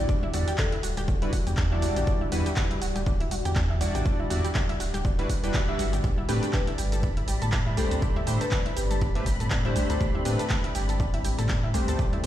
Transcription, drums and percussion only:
0.09 kick loud
0.09 cabasa soft
0.23 high conga loud
0.33 open hi-hat loud
0.33 low conga medium
0.33 cabasa medium
0.48 closed hi-hat medium
0.48 cabasa soft
0.58 kick loud
0.58 clap loud
0.58 high conga medium
0.58 cabasa soft
0.72 closed hi-hat medium
0.83 open hi-hat loud
0.83 cabasa medium
0.97 closed hi-hat medium
0.97 high conga loud
0.97 cabasa soft
1.08 kick loud
1.08 cabasa soft
1.22 closed hi-hat medium
1.33 kick medium
1.33 open hi-hat loud
1.33 high conga medium
1.33 cabasa medium
1.47 closed hi-hat medium
1.47 low conga medium
1.47 cabasa soft
1.57 kick loud
1.57 clap loud
1.57 cabasa soft
1.82 open hi-hat medium
1.82 high conga loud
1.82 cabasa medium
1.96 closed hi-hat medium
1.96 low conga loud
1.96 cabasa soft
2.07 kick loud
2.07 cabasa soft
2.21 high conga loud
2.32 open hi-hat loud
2.32 low conga medium
2.32 cabasa medium
2.46 closed hi-hat medium
2.46 cabasa soft
2.56 kick loud
2.56 clap loud
2.56 high conga medium
2.56 cabasa soft
2.71 closed hi-hat medium
2.82 open hi-hat loud
2.82 cabasa medium
2.96 closed hi-hat medium
2.96 high conga loud
2.96 cabasa soft
3.06 kick loud
3.06 cabasa soft
3.20 closed hi-hat medium
3.31 open hi-hat loud
3.31 high conga medium
3.31 cabasa medium
3.45 closed hi-hat medium
3.45 low conga medium
3.45 cabasa soft
3.56 kick loud
3.56 clap loud
3.56 cabasa soft
3.81 open hi-hat loud
3.81 high conga loud
3.81 cabasa medium
3.95 closed hi-hat medium
3.95 low conga loud
3.95 cabasa soft
4.06 kick loud
4.06 cabasa soft
4.20 high conga medium
4.30 open hi-hat loud
4.30 low conga medium
4.30 cabasa medium
4.45 closed hi-hat medium
4.45 cabasa soft
4.55 kick loud
4.55 clap loud
4.55 high conga medium
4.55 cabasa soft
4.69 closed hi-hat medium
4.80 open hi-hat loud
4.80 cabasa medium
4.94 closed hi-hat medium
4.94 high conga loud
4.94 cabasa soft
5.05 kick loud
5.05 cabasa soft
5.19 closed hi-hat medium
5.30 kick medium
5.30 open hi-hat loud
5.30 high conga medium
5.30 cabasa medium
5.44 closed hi-hat medium
5.44 low conga medium
5.44 cabasa soft
5.54 kick loud
5.54 clap loud
5.54 cabasa soft
5.79 open hi-hat loud
5.79 high conga loud
5.79 cabasa medium
5.93 closed hi-hat medium
5.93 low conga medium
5.93 cabasa soft
6.04 kick loud
6.04 cabasa soft
6.18 high conga medium
6.29 open hi-hat loud
6.29 low conga medium
6.29 cabasa medium
6.43 closed hi-hat medium
6.43 cabasa soft
6.53 kick loud
6.53 clap loud
6.53 high conga medium
6.53 cabasa soft
6.67 closed hi-hat medium
6.78 open hi-hat medium
6.78 cabasa medium
6.92 closed hi-hat medium
6.92 high conga medium
6.92 cabasa soft
7.03 kick loud
7.03 cabasa soft
7.17 closed hi-hat medium
7.28 open hi-hat loud
7.28 high conga medium
7.28 cabasa medium
7.42 closed hi-hat medium
7.42 low conga medium
7.42 cabasa soft
7.52 kick loud
7.52 clap loud
7.52 cabasa soft
7.77 open hi-hat medium
7.77 high conga loud
7.77 cabasa medium
7.91 closed hi-hat medium
7.91 low conga medium
7.91 cabasa soft
8.02 kick loud
8.02 cabasa soft
8.16 high conga medium
8.27 open hi-hat loud
8.27 low conga medium
8.27 cabasa medium
8.41 closed hi-hat medium
8.41 cabasa soft
8.51 kick loud
8.51 clap loud
8.51 high conga medium
8.51 cabasa soft
8.66 closed hi-hat medium
8.77 open hi-hat medium
8.77 cabasa medium
8.91 closed hi-hat medium
8.91 high conga medium
8.91 cabasa soft
9.01 kick loud
9.01 cabasa soft
9.15 closed hi-hat medium
9.26 kick medium
9.26 open hi-hat loud
9.26 high conga medium
9.26 cabasa medium
9.40 closed hi-hat medium
9.40 low conga medium
9.40 cabasa soft
9.50 kick loud
9.50 clap loud
9.50 cabasa soft
9.76 open hi-hat medium
9.76 high conga medium
9.76 cabasa medium
9.90 closed hi-hat medium
9.90 low conga medium
9.90 cabasa soft
10.01 kick loud
10.01 cabasa soft
10.15 high conga medium
10.25 open hi-hat loud
10.25 low conga medium
10.25 cabasa medium
10.39 closed hi-hat medium
10.39 cabasa soft
10.50 kick loud
10.50 clap loud
10.50 high conga medium
10.50 cabasa soft
10.64 closed hi-hat medium
10.75 open hi-hat medium
10.75 cabasa medium
10.89 closed hi-hat medium
10.89 high conga medium
10.89 cabasa soft
11.00 kick loud
11.00 cabasa soft
11.14 closed hi-hat medium
11.24 open hi-hat loud
11.24 high conga medium
11.24 cabasa medium
11.39 closed hi-hat medium
11.39 low conga medium
11.39 cabasa soft
11.49 kick loud
11.49 clap loud
11.49 cabasa soft
11.74 open hi-hat medium
11.74 high conga loud
11.74 cabasa medium
11.88 closed hi-hat medium
11.88 low conga medium
11.88 cabasa soft
11.99 kick loud
11.99 cabasa soft
12.13 closed hi-hat soft
12.13 high conga medium

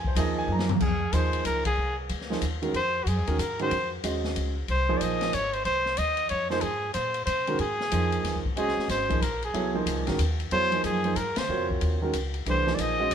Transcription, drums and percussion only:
0.05 kick medium
0.16 hi-hat pedal medium
0.16 ride medium
0.59 snare medium
0.69 floor tom medium
0.80 kick medium
0.80 crash medium
1.13 hi-hat pedal medium
1.13 ride medium
1.33 ride soft
1.45 hi-hat pedal medium
1.45 ride medium
1.65 kick medium
1.65 ride medium
2.09 ride medium
2.21 snare soft
2.32 snare soft
2.42 hi-hat pedal medium
2.42 ride medium
2.63 ride soft
2.74 ride medium
3.07 hi-hat pedal medium
3.07 ride medium
3.27 ride soft
3.39 hi-hat pedal medium
3.39 ride medium
3.59 ride soft
3.71 ride medium
4.04 hi-hat pedal medium
4.04 ride medium
4.24 snare medium
4.36 ride medium
4.68 ride soft
5.01 hi-hat pedal medium
5.01 ride medium
5.21 snare medium
5.21 ride soft
5.33 hi-hat pedal medium
5.33 ride medium
5.53 ride soft
5.65 ride medium
5.86 snare soft
5.97 hi-hat pedal medium
5.97 ride medium
6.17 ride soft
6.29 ride medium
6.50 snare soft
6.61 ride medium
6.94 hi-hat pedal medium
6.94 ride medium
7.14 ride soft
7.27 hi-hat pedal medium
7.27 ride medium
7.47 ride soft
7.59 ride soft
7.80 snare soft
7.92 hi-hat pedal medium
7.92 ride medium
8.12 ride soft
8.25 snare soft
8.25 ride medium
8.45 kick soft
8.57 ride medium
8.68 snare soft
8.79 snare soft
8.89 snare soft
8.89 hi-hat pedal medium
8.89 ride medium
9.10 kick medium
9.10 ride soft
9.22 hi-hat pedal soft
9.22 ride medium
9.43 ride soft
9.54 ride medium
9.87 hi-hat pedal medium
9.87 ride medium
10.07 snare soft
10.07 ride soft
10.19 hi-hat pedal medium
10.19 ride medium
10.40 ride soft
10.51 ride medium
10.72 ride soft
10.84 hi-hat pedal medium
10.84 ride medium
11.04 ride soft
11.16 hi-hat pedal medium
11.16 ride medium
11.36 snare medium
11.36 ride medium
11.70 kick soft
11.81 ride medium
12.13 hi-hat pedal medium
12.13 ride medium
12.34 ride soft
12.46 ride medium
12.67 snare soft
12.78 hi-hat pedal medium
12.78 ride medium
13.11 hi-hat pedal medium
13.11 ride medium

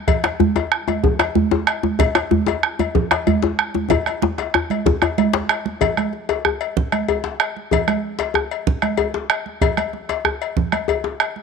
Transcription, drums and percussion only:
0.08 bombo rim soft
0.08 bombo low loud
0.08 cowbell medium
0.08 djembe slap soft
0.08 djembe bass medium
0.08 low conga medium
0.24 bombo rim medium
0.24 cowbell soft
0.24 djembe slap medium
0.24 djembe slap soft
0.24 high conga soft
0.40 bombo rim soft
0.40 djembe slap soft
0.40 high conga medium
0.40 djembe bass medium
0.56 cowbell soft
0.56 djembe slap medium
0.56 djembe tone medium
0.56 high conga soft
0.72 bombo rim loud
0.88 cowbell soft
0.88 djembe slap soft
0.88 djembe tone medium
0.88 high conga medium
1.03 bombo low loud
1.03 low conga medium
1.03 djembe bass medium
1.19 bombo rim medium
1.19 cowbell medium
1.19 djembe slap medium
1.35 high conga medium
1.35 djembe bass medium
1.51 djembe slap medium
1.51 djembe tone medium
1.67 bombo rim loud
1.67 cowbell medium
1.83 djembe tone medium
1.83 high conga medium
1.99 bombo rim soft
1.99 bombo low loud
1.99 cowbell medium
1.99 djembe slap soft
1.99 djembe bass medium
1.99 low conga medium
2.15 bombo rim medium
2.15 cowbell medium
2.15 djembe slap soft
2.15 djembe slap medium
2.15 high conga soft
2.31 bombo rim soft
2.31 high conga medium
2.31 djembe bass medium
2.46 cowbell medium
2.46 djembe slap medium
2.46 djembe tone medium
2.46 high conga soft
2.63 bombo rim medium
2.79 cowbell soft
2.79 djembe slap soft
2.79 djembe tone medium
2.79 high conga medium
2.95 bombo low loud
2.95 djembe bass medium
2.95 low conga medium
3.11 bombo rim medium
3.11 cowbell medium
3.11 djembe slap medium
3.27 cowbell soft
3.27 high conga medium
3.27 djembe bass medium
3.42 djembe slap medium
3.42 djembe tone medium
3.59 bombo rim loud
3.74 high conga soft
3.74 djembe tone medium
3.90 bombo rim soft
3.90 bombo low medium
3.90 cowbell medium
3.90 djembe slap soft
3.90 high conga soft
3.90 djembe tone loud
3.90 low conga medium
3.90 djembe bass medium
4.06 bombo rim medium
4.06 cowbell medium
4.06 high conga soft
4.22 bombo rim soft
4.22 djembe slap soft
4.22 high conga medium
4.22 djembe tone loud
4.38 bombo rim soft
4.38 cowbell soft
4.38 djembe slap medium
4.38 djembe tone medium
4.54 bombo rim medium
4.54 djembe slap soft
4.54 djembe tone loud
4.70 cowbell soft
4.70 djembe slap soft
4.70 high conga medium
4.86 bombo low loud
4.86 djembe tone loud
4.86 djembe bass medium
4.86 low conga medium
5.02 bombo rim medium
5.02 cowbell soft
5.02 djembe tone loud
5.18 cowbell medium
5.18 high conga medium
5.33 bombo rim soft
5.33 djembe slap loud
5.33 djembe slap medium
5.33 djembe tone medium
5.49 bombo rim loud
5.49 cowbell soft
5.49 djembe slap soft
5.65 bombo rim soft
5.65 high conga medium
5.81 bombo low medium
5.81 cowbell medium
5.81 djembe bass medium
5.81 low conga medium
5.97 bombo rim medium
5.97 cowbell soft
5.97 djembe slap soft
5.97 high conga medium
6.13 djembe slap soft
6.13 high conga soft
6.29 bombo rim soft
6.29 cowbell medium
6.29 djembe slap medium
6.29 djembe tone medium
6.45 bombo rim medium
6.45 djembe bass medium
6.61 cowbell soft
6.77 bombo low medium
6.77 low conga medium
6.92 bombo rim medium
6.92 cowbell soft
6.92 high conga medium
7.09 cowbell soft
7.09 djembe bass medium
7.24 bombo rim soft
7.24 djembe slap medium
7.24 djembe tone medium
7.40 bombo rim loud
7.40 cowbell soft
7.40 djembe slap soft
7.57 high conga soft
7.71 bombo low medium
7.71 cowbell medium
7.71 djembe bass medium
7.71 low conga medium
7.87 bombo rim medium
7.87 cowbell medium
7.87 djembe slap soft
7.87 high conga medium
8.19 bombo rim soft
8.19 cowbell medium
8.19 djembe slap medium
8.19 djembe tone medium
8.34 bombo rim medium
8.34 djembe bass medium
8.51 cowbell soft
8.67 bombo low medium
8.67 low conga medium
8.82 bombo rim medium
8.82 cowbell soft
8.82 high conga medium
8.97 cowbell medium
8.97 djembe bass medium
9.14 bombo rim soft
9.14 djembe slap medium
9.14 djembe tone medium
9.30 bombo rim loud
9.30 cowbell soft
9.30 djembe slap soft
9.46 high conga soft
9.61 bombo low loud
9.61 cowbell medium
9.61 low conga medium
9.61 djembe bass medium
9.77 bombo rim medium
9.77 cowbell medium
9.77 high conga medium
9.93 djembe slap soft
9.93 high conga soft
10.09 bombo rim soft
10.09 cowbell medium
10.09 djembe slap medium
10.09 djembe tone soft
10.25 bombo rim medium
10.25 djembe bass medium
10.42 cowbell soft
10.57 bombo low medium
10.57 low conga medium
10.72 bombo rim medium
10.72 cowbell medium
10.72 high conga medium
10.88 cowbell medium
10.88 djembe bass medium
11.04 bombo rim soft
11.04 djembe slap medium
11.04 djembe tone medium
11.20 bombo rim medium
11.20 cowbell soft
11.20 djembe slap soft
11.36 high conga soft

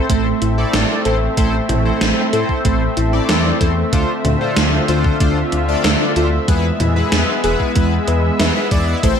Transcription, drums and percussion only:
0.10 kick loud
0.10 closed hi-hat medium
0.42 closed hi-hat medium
0.73 snare loud
0.73 closed hi-hat medium
1.05 closed hi-hat medium
1.37 kick loud
1.37 closed hi-hat medium
1.69 closed hi-hat medium
1.69 mid tom medium
2.01 snare loud
2.01 closed hi-hat medium
2.33 closed hi-hat medium
2.49 kick medium
2.65 kick loud
2.65 closed hi-hat medium
2.97 closed hi-hat medium
3.29 snare loud
3.29 closed hi-hat medium
3.61 kick loud
3.61 closed hi-hat medium
3.93 kick loud
3.93 closed hi-hat medium
4.25 closed hi-hat medium
4.25 mid tom medium
4.56 snare loud
4.56 closed hi-hat medium
4.88 closed hi-hat medium
5.04 kick loud
5.20 kick loud
5.20 closed hi-hat medium
5.52 closed hi-hat medium
5.84 snare loud
5.84 closed hi-hat medium
6.16 closed hi-hat medium
6.48 kick loud
6.48 closed hi-hat medium
6.80 closed hi-hat medium
6.80 mid tom medium
7.12 snare loud
7.12 closed hi-hat medium
7.44 closed hi-hat medium
7.60 kick medium
7.76 kick loud
7.76 closed hi-hat medium
8.08 closed hi-hat medium
8.40 snare loud
8.40 closed hi-hat medium
8.71 kick loud
8.71 closed hi-hat medium
9.03 kick loud
9.03 closed hi-hat medium

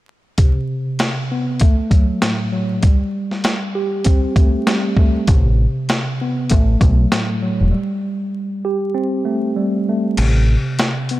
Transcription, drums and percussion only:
0.38 kick loud
0.38 closed hi-hat medium
0.99 snare loud
0.99 closed hi-hat medium
1.60 kick medium
1.60 closed hi-hat medium
1.91 kick medium
1.91 closed hi-hat soft
2.22 snare loud
2.22 closed hi-hat medium
2.83 kick loud
2.83 closed hi-hat medium
3.31 snare soft
3.44 snare loud
3.44 closed hi-hat medium
4.04 kick medium
4.04 closed hi-hat medium
4.36 kick loud
4.36 closed hi-hat soft
4.67 snare loud
4.67 closed hi-hat medium
4.97 kick medium
5.28 kick loud
5.28 closed hi-hat medium
5.89 snare loud
5.89 closed hi-hat medium
6.50 kick medium
6.50 closed hi-hat medium
6.81 kick loud
6.81 closed hi-hat medium
7.12 snare loud
7.12 closed hi-hat medium
10.17 closed hi-hat medium
10.17 crash medium
10.79 snare loud
10.79 closed hi-hat medium
11.09 closed hi-hat medium

